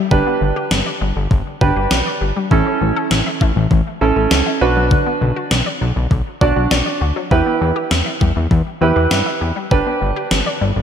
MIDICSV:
0, 0, Header, 1, 5, 480
1, 0, Start_track
1, 0, Tempo, 600000
1, 90, Time_signature, 4, 2, 24, 8
1, 8656, End_track
2, 0, Start_track
2, 0, Title_t, "Grand piano"
2, 0, Program_c, 0, 0
2, 90, Note_on_c, 0, 62, 81
2, 90, Note_on_c, 0, 67, 75
2, 90, Note_on_c, 0, 71, 90
2, 821, Note_off_c, 0, 62, 0
2, 821, Note_off_c, 0, 67, 0
2, 821, Note_off_c, 0, 71, 0
2, 1290, Note_on_c, 0, 62, 79
2, 1290, Note_on_c, 0, 67, 76
2, 1290, Note_on_c, 0, 71, 88
2, 1838, Note_off_c, 0, 67, 0
2, 1838, Note_off_c, 0, 71, 0
2, 1839, Note_off_c, 0, 62, 0
2, 2009, Note_on_c, 0, 61, 85
2, 2009, Note_on_c, 0, 64, 75
2, 2009, Note_on_c, 0, 69, 91
2, 2740, Note_off_c, 0, 61, 0
2, 2741, Note_off_c, 0, 64, 0
2, 2741, Note_off_c, 0, 69, 0
2, 3209, Note_on_c, 0, 69, 90
2, 3210, Note_on_c, 0, 61, 82
2, 3210, Note_on_c, 0, 64, 75
2, 3690, Note_off_c, 0, 61, 0
2, 3690, Note_off_c, 0, 64, 0
2, 3690, Note_off_c, 0, 69, 0
2, 3690, Note_on_c, 0, 62, 89
2, 3690, Note_on_c, 0, 66, 83
2, 3690, Note_on_c, 0, 71, 98
2, 4458, Note_off_c, 0, 62, 0
2, 4458, Note_off_c, 0, 66, 0
2, 4458, Note_off_c, 0, 71, 0
2, 5130, Note_on_c, 0, 62, 80
2, 5130, Note_on_c, 0, 66, 74
2, 5130, Note_on_c, 0, 74, 88
2, 5678, Note_off_c, 0, 62, 0
2, 5678, Note_off_c, 0, 66, 0
2, 5678, Note_off_c, 0, 74, 0
2, 5851, Note_on_c, 0, 64, 81
2, 5851, Note_on_c, 0, 67, 76
2, 5851, Note_on_c, 0, 71, 89
2, 6582, Note_off_c, 0, 64, 0
2, 6582, Note_off_c, 0, 67, 0
2, 6582, Note_off_c, 0, 71, 0
2, 7052, Note_on_c, 0, 64, 78
2, 7052, Note_on_c, 0, 67, 73
2, 7052, Note_on_c, 0, 71, 91
2, 7599, Note_off_c, 0, 64, 0
2, 7599, Note_off_c, 0, 67, 0
2, 7599, Note_off_c, 0, 71, 0
2, 7770, Note_on_c, 0, 62, 82
2, 7770, Note_on_c, 0, 67, 77
2, 7771, Note_on_c, 0, 71, 91
2, 8501, Note_off_c, 0, 62, 0
2, 8501, Note_off_c, 0, 67, 0
2, 8501, Note_off_c, 0, 71, 0
2, 8656, End_track
3, 0, Start_track
3, 0, Title_t, "Synth arpeggio sound"
3, 0, Program_c, 1, 84
3, 91, Note_on_c, 1, 50, 85
3, 192, Note_off_c, 1, 50, 0
3, 211, Note_on_c, 1, 59, 78
3, 312, Note_off_c, 1, 59, 0
3, 331, Note_on_c, 1, 50, 69
3, 432, Note_off_c, 1, 50, 0
3, 450, Note_on_c, 1, 67, 95
3, 551, Note_off_c, 1, 67, 0
3, 572, Note_on_c, 1, 74, 82
3, 672, Note_off_c, 1, 74, 0
3, 692, Note_on_c, 1, 74, 81
3, 792, Note_off_c, 1, 74, 0
3, 811, Note_on_c, 1, 55, 88
3, 912, Note_off_c, 1, 55, 0
3, 931, Note_on_c, 1, 50, 72
3, 1032, Note_off_c, 1, 50, 0
3, 1051, Note_on_c, 1, 50, 75
3, 1152, Note_off_c, 1, 50, 0
3, 1291, Note_on_c, 1, 50, 71
3, 1392, Note_off_c, 1, 50, 0
3, 1411, Note_on_c, 1, 67, 81
3, 1512, Note_off_c, 1, 67, 0
3, 1530, Note_on_c, 1, 74, 95
3, 1631, Note_off_c, 1, 74, 0
3, 1650, Note_on_c, 1, 74, 82
3, 1751, Note_off_c, 1, 74, 0
3, 1771, Note_on_c, 1, 67, 82
3, 1872, Note_off_c, 1, 67, 0
3, 1891, Note_on_c, 1, 55, 87
3, 1992, Note_off_c, 1, 55, 0
3, 2012, Note_on_c, 1, 52, 87
3, 2112, Note_off_c, 1, 52, 0
3, 2132, Note_on_c, 1, 61, 78
3, 2232, Note_off_c, 1, 61, 0
3, 2252, Note_on_c, 1, 52, 68
3, 2352, Note_off_c, 1, 52, 0
3, 2372, Note_on_c, 1, 69, 97
3, 2472, Note_off_c, 1, 69, 0
3, 2493, Note_on_c, 1, 76, 79
3, 2593, Note_off_c, 1, 76, 0
3, 2612, Note_on_c, 1, 76, 84
3, 2712, Note_off_c, 1, 76, 0
3, 2732, Note_on_c, 1, 57, 90
3, 2832, Note_off_c, 1, 57, 0
3, 2851, Note_on_c, 1, 52, 73
3, 2952, Note_off_c, 1, 52, 0
3, 2971, Note_on_c, 1, 52, 74
3, 3072, Note_off_c, 1, 52, 0
3, 3210, Note_on_c, 1, 52, 71
3, 3311, Note_off_c, 1, 52, 0
3, 3331, Note_on_c, 1, 69, 78
3, 3432, Note_off_c, 1, 69, 0
3, 3451, Note_on_c, 1, 76, 92
3, 3552, Note_off_c, 1, 76, 0
3, 3572, Note_on_c, 1, 76, 81
3, 3672, Note_off_c, 1, 76, 0
3, 3691, Note_on_c, 1, 66, 76
3, 3792, Note_off_c, 1, 66, 0
3, 3811, Note_on_c, 1, 54, 89
3, 3912, Note_off_c, 1, 54, 0
3, 3932, Note_on_c, 1, 50, 86
3, 4032, Note_off_c, 1, 50, 0
3, 4052, Note_on_c, 1, 59, 78
3, 4152, Note_off_c, 1, 59, 0
3, 4171, Note_on_c, 1, 50, 67
3, 4272, Note_off_c, 1, 50, 0
3, 4291, Note_on_c, 1, 66, 95
3, 4392, Note_off_c, 1, 66, 0
3, 4410, Note_on_c, 1, 74, 80
3, 4511, Note_off_c, 1, 74, 0
3, 4530, Note_on_c, 1, 74, 82
3, 4631, Note_off_c, 1, 74, 0
3, 4651, Note_on_c, 1, 54, 88
3, 4752, Note_off_c, 1, 54, 0
3, 4772, Note_on_c, 1, 50, 75
3, 4872, Note_off_c, 1, 50, 0
3, 4892, Note_on_c, 1, 50, 73
3, 4992, Note_off_c, 1, 50, 0
3, 5131, Note_on_c, 1, 50, 72
3, 5232, Note_off_c, 1, 50, 0
3, 5250, Note_on_c, 1, 66, 80
3, 5351, Note_off_c, 1, 66, 0
3, 5370, Note_on_c, 1, 74, 94
3, 5471, Note_off_c, 1, 74, 0
3, 5489, Note_on_c, 1, 74, 79
3, 5591, Note_off_c, 1, 74, 0
3, 5609, Note_on_c, 1, 66, 81
3, 5710, Note_off_c, 1, 66, 0
3, 5729, Note_on_c, 1, 54, 92
3, 5831, Note_off_c, 1, 54, 0
3, 5849, Note_on_c, 1, 52, 88
3, 5950, Note_off_c, 1, 52, 0
3, 5968, Note_on_c, 1, 59, 80
3, 6070, Note_off_c, 1, 59, 0
3, 6088, Note_on_c, 1, 52, 68
3, 6190, Note_off_c, 1, 52, 0
3, 6207, Note_on_c, 1, 67, 97
3, 6309, Note_off_c, 1, 67, 0
3, 6328, Note_on_c, 1, 76, 82
3, 6430, Note_off_c, 1, 76, 0
3, 6448, Note_on_c, 1, 76, 84
3, 6550, Note_off_c, 1, 76, 0
3, 6569, Note_on_c, 1, 55, 90
3, 6670, Note_off_c, 1, 55, 0
3, 6688, Note_on_c, 1, 52, 75
3, 6790, Note_off_c, 1, 52, 0
3, 6808, Note_on_c, 1, 52, 73
3, 6910, Note_off_c, 1, 52, 0
3, 7048, Note_on_c, 1, 52, 71
3, 7150, Note_off_c, 1, 52, 0
3, 7168, Note_on_c, 1, 67, 80
3, 7270, Note_off_c, 1, 67, 0
3, 7288, Note_on_c, 1, 76, 92
3, 7390, Note_off_c, 1, 76, 0
3, 7410, Note_on_c, 1, 76, 80
3, 7511, Note_off_c, 1, 76, 0
3, 7529, Note_on_c, 1, 67, 78
3, 7631, Note_off_c, 1, 67, 0
3, 7648, Note_on_c, 1, 55, 87
3, 7750, Note_off_c, 1, 55, 0
3, 7770, Note_on_c, 1, 50, 84
3, 7871, Note_off_c, 1, 50, 0
3, 7890, Note_on_c, 1, 59, 75
3, 7991, Note_off_c, 1, 59, 0
3, 8010, Note_on_c, 1, 50, 70
3, 8111, Note_off_c, 1, 50, 0
3, 8131, Note_on_c, 1, 67, 97
3, 8232, Note_off_c, 1, 67, 0
3, 8250, Note_on_c, 1, 74, 80
3, 8351, Note_off_c, 1, 74, 0
3, 8372, Note_on_c, 1, 74, 82
3, 8472, Note_off_c, 1, 74, 0
3, 8491, Note_on_c, 1, 55, 90
3, 8592, Note_off_c, 1, 55, 0
3, 8611, Note_on_c, 1, 50, 73
3, 8656, Note_off_c, 1, 50, 0
3, 8656, End_track
4, 0, Start_track
4, 0, Title_t, "Analog synth bass"
4, 0, Program_c, 2, 38
4, 90, Note_on_c, 2, 31, 99
4, 179, Note_off_c, 2, 31, 0
4, 329, Note_on_c, 2, 31, 94
4, 418, Note_off_c, 2, 31, 0
4, 570, Note_on_c, 2, 31, 94
4, 658, Note_off_c, 2, 31, 0
4, 810, Note_on_c, 2, 31, 96
4, 898, Note_off_c, 2, 31, 0
4, 930, Note_on_c, 2, 31, 98
4, 1018, Note_off_c, 2, 31, 0
4, 1047, Note_on_c, 2, 31, 105
4, 1137, Note_off_c, 2, 31, 0
4, 1290, Note_on_c, 2, 31, 94
4, 1379, Note_off_c, 2, 31, 0
4, 1410, Note_on_c, 2, 31, 88
4, 1499, Note_off_c, 2, 31, 0
4, 1530, Note_on_c, 2, 35, 92
4, 1618, Note_off_c, 2, 35, 0
4, 1769, Note_on_c, 2, 31, 94
4, 1858, Note_off_c, 2, 31, 0
4, 2009, Note_on_c, 2, 33, 104
4, 2098, Note_off_c, 2, 33, 0
4, 2250, Note_on_c, 2, 33, 95
4, 2339, Note_off_c, 2, 33, 0
4, 2490, Note_on_c, 2, 33, 104
4, 2578, Note_off_c, 2, 33, 0
4, 2729, Note_on_c, 2, 33, 100
4, 2818, Note_off_c, 2, 33, 0
4, 2850, Note_on_c, 2, 33, 104
4, 2939, Note_off_c, 2, 33, 0
4, 2967, Note_on_c, 2, 33, 104
4, 3056, Note_off_c, 2, 33, 0
4, 3210, Note_on_c, 2, 33, 97
4, 3299, Note_off_c, 2, 33, 0
4, 3330, Note_on_c, 2, 33, 89
4, 3418, Note_off_c, 2, 33, 0
4, 3450, Note_on_c, 2, 37, 104
4, 3539, Note_off_c, 2, 37, 0
4, 3691, Note_on_c, 2, 35, 95
4, 3956, Note_off_c, 2, 35, 0
4, 4170, Note_on_c, 2, 35, 104
4, 4258, Note_off_c, 2, 35, 0
4, 4410, Note_on_c, 2, 35, 109
4, 4499, Note_off_c, 2, 35, 0
4, 4650, Note_on_c, 2, 35, 101
4, 4738, Note_off_c, 2, 35, 0
4, 4770, Note_on_c, 2, 35, 99
4, 4858, Note_off_c, 2, 35, 0
4, 4887, Note_on_c, 2, 35, 103
4, 4977, Note_off_c, 2, 35, 0
4, 5130, Note_on_c, 2, 35, 104
4, 5219, Note_off_c, 2, 35, 0
4, 5251, Note_on_c, 2, 35, 92
4, 5339, Note_off_c, 2, 35, 0
4, 5370, Note_on_c, 2, 35, 90
4, 5458, Note_off_c, 2, 35, 0
4, 5610, Note_on_c, 2, 38, 90
4, 5699, Note_off_c, 2, 38, 0
4, 5850, Note_on_c, 2, 40, 103
4, 5938, Note_off_c, 2, 40, 0
4, 6091, Note_on_c, 2, 40, 104
4, 6179, Note_off_c, 2, 40, 0
4, 6331, Note_on_c, 2, 40, 105
4, 6419, Note_off_c, 2, 40, 0
4, 6570, Note_on_c, 2, 40, 97
4, 6658, Note_off_c, 2, 40, 0
4, 6691, Note_on_c, 2, 40, 101
4, 6779, Note_off_c, 2, 40, 0
4, 6808, Note_on_c, 2, 40, 100
4, 6897, Note_off_c, 2, 40, 0
4, 7051, Note_on_c, 2, 40, 101
4, 7139, Note_off_c, 2, 40, 0
4, 7170, Note_on_c, 2, 40, 104
4, 7258, Note_off_c, 2, 40, 0
4, 7291, Note_on_c, 2, 43, 86
4, 7379, Note_off_c, 2, 43, 0
4, 7531, Note_on_c, 2, 40, 90
4, 7619, Note_off_c, 2, 40, 0
4, 7771, Note_on_c, 2, 31, 99
4, 7859, Note_off_c, 2, 31, 0
4, 8012, Note_on_c, 2, 31, 96
4, 8100, Note_off_c, 2, 31, 0
4, 8251, Note_on_c, 2, 31, 97
4, 8339, Note_off_c, 2, 31, 0
4, 8491, Note_on_c, 2, 31, 96
4, 8579, Note_off_c, 2, 31, 0
4, 8610, Note_on_c, 2, 31, 99
4, 8656, Note_off_c, 2, 31, 0
4, 8656, End_track
5, 0, Start_track
5, 0, Title_t, "Drums"
5, 90, Note_on_c, 9, 36, 96
5, 170, Note_off_c, 9, 36, 0
5, 569, Note_on_c, 9, 38, 113
5, 649, Note_off_c, 9, 38, 0
5, 1048, Note_on_c, 9, 36, 94
5, 1128, Note_off_c, 9, 36, 0
5, 1290, Note_on_c, 9, 36, 90
5, 1370, Note_off_c, 9, 36, 0
5, 1528, Note_on_c, 9, 38, 108
5, 1608, Note_off_c, 9, 38, 0
5, 2009, Note_on_c, 9, 36, 95
5, 2089, Note_off_c, 9, 36, 0
5, 2488, Note_on_c, 9, 38, 119
5, 2568, Note_off_c, 9, 38, 0
5, 2728, Note_on_c, 9, 36, 85
5, 2808, Note_off_c, 9, 36, 0
5, 2967, Note_on_c, 9, 36, 95
5, 3047, Note_off_c, 9, 36, 0
5, 3448, Note_on_c, 9, 38, 104
5, 3528, Note_off_c, 9, 38, 0
5, 3930, Note_on_c, 9, 36, 99
5, 4010, Note_off_c, 9, 36, 0
5, 4409, Note_on_c, 9, 38, 112
5, 4489, Note_off_c, 9, 38, 0
5, 4888, Note_on_c, 9, 36, 93
5, 4968, Note_off_c, 9, 36, 0
5, 5131, Note_on_c, 9, 36, 85
5, 5211, Note_off_c, 9, 36, 0
5, 5369, Note_on_c, 9, 38, 107
5, 5449, Note_off_c, 9, 38, 0
5, 5850, Note_on_c, 9, 36, 94
5, 5930, Note_off_c, 9, 36, 0
5, 6329, Note_on_c, 9, 38, 118
5, 6409, Note_off_c, 9, 38, 0
5, 6570, Note_on_c, 9, 36, 86
5, 6650, Note_off_c, 9, 36, 0
5, 6808, Note_on_c, 9, 36, 92
5, 6888, Note_off_c, 9, 36, 0
5, 7289, Note_on_c, 9, 38, 104
5, 7369, Note_off_c, 9, 38, 0
5, 7770, Note_on_c, 9, 36, 97
5, 7850, Note_off_c, 9, 36, 0
5, 8249, Note_on_c, 9, 38, 111
5, 8329, Note_off_c, 9, 38, 0
5, 8656, End_track
0, 0, End_of_file